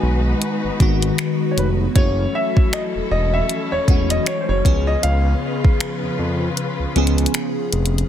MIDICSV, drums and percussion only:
0, 0, Header, 1, 2, 480
1, 0, Start_track
1, 0, Tempo, 769231
1, 1222, Time_signature, 4, 2, 24, 8
1, 5046, End_track
2, 0, Start_track
2, 0, Title_t, "Drums"
2, 259, Note_on_c, 9, 42, 59
2, 322, Note_off_c, 9, 42, 0
2, 499, Note_on_c, 9, 36, 84
2, 500, Note_on_c, 9, 42, 50
2, 562, Note_off_c, 9, 36, 0
2, 562, Note_off_c, 9, 42, 0
2, 639, Note_on_c, 9, 42, 53
2, 702, Note_off_c, 9, 42, 0
2, 738, Note_on_c, 9, 42, 72
2, 741, Note_on_c, 9, 26, 121
2, 801, Note_off_c, 9, 42, 0
2, 804, Note_off_c, 9, 26, 0
2, 983, Note_on_c, 9, 42, 70
2, 1046, Note_off_c, 9, 42, 0
2, 1220, Note_on_c, 9, 36, 113
2, 1220, Note_on_c, 9, 42, 73
2, 1283, Note_off_c, 9, 36, 0
2, 1283, Note_off_c, 9, 42, 0
2, 1602, Note_on_c, 9, 36, 95
2, 1664, Note_off_c, 9, 36, 0
2, 1703, Note_on_c, 9, 42, 64
2, 1706, Note_on_c, 9, 26, 103
2, 1765, Note_off_c, 9, 42, 0
2, 1768, Note_off_c, 9, 26, 0
2, 2181, Note_on_c, 9, 42, 60
2, 2243, Note_off_c, 9, 42, 0
2, 2420, Note_on_c, 9, 36, 85
2, 2422, Note_on_c, 9, 42, 48
2, 2483, Note_off_c, 9, 36, 0
2, 2484, Note_off_c, 9, 42, 0
2, 2560, Note_on_c, 9, 42, 53
2, 2622, Note_off_c, 9, 42, 0
2, 2661, Note_on_c, 9, 42, 70
2, 2664, Note_on_c, 9, 26, 121
2, 2723, Note_off_c, 9, 42, 0
2, 2727, Note_off_c, 9, 26, 0
2, 2901, Note_on_c, 9, 36, 102
2, 2906, Note_on_c, 9, 42, 69
2, 2964, Note_off_c, 9, 36, 0
2, 2968, Note_off_c, 9, 42, 0
2, 3140, Note_on_c, 9, 42, 76
2, 3203, Note_off_c, 9, 42, 0
2, 3522, Note_on_c, 9, 36, 98
2, 3585, Note_off_c, 9, 36, 0
2, 3622, Note_on_c, 9, 42, 67
2, 3625, Note_on_c, 9, 26, 99
2, 3684, Note_off_c, 9, 42, 0
2, 3687, Note_off_c, 9, 26, 0
2, 4101, Note_on_c, 9, 42, 62
2, 4163, Note_off_c, 9, 42, 0
2, 4342, Note_on_c, 9, 42, 39
2, 4405, Note_off_c, 9, 42, 0
2, 4412, Note_on_c, 9, 42, 46
2, 4474, Note_off_c, 9, 42, 0
2, 4481, Note_on_c, 9, 42, 54
2, 4532, Note_off_c, 9, 42, 0
2, 4532, Note_on_c, 9, 42, 64
2, 4581, Note_off_c, 9, 42, 0
2, 4581, Note_on_c, 9, 42, 72
2, 4584, Note_on_c, 9, 26, 117
2, 4644, Note_off_c, 9, 42, 0
2, 4647, Note_off_c, 9, 26, 0
2, 4820, Note_on_c, 9, 42, 75
2, 4883, Note_off_c, 9, 42, 0
2, 4902, Note_on_c, 9, 42, 58
2, 4964, Note_off_c, 9, 42, 0
2, 4981, Note_on_c, 9, 42, 41
2, 5043, Note_off_c, 9, 42, 0
2, 5046, End_track
0, 0, End_of_file